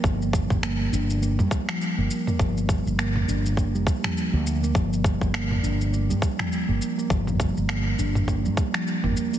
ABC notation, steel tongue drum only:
X:1
M:4/4
L:1/16
Q:"Swing 16ths" 1/4=102
K:Gm
V:1 name="Steel tongue drum"
F, z G,2 B, z D2 B, G, z F,2 B, z B, | F, z G,2 B, z D2 B, G, z F,2 B, z B, | F, z G,2 B, z D2 B, G, z F,2 B, z B, | F, z G,2 B, z D2 B, G, z F,2 B, z B, |]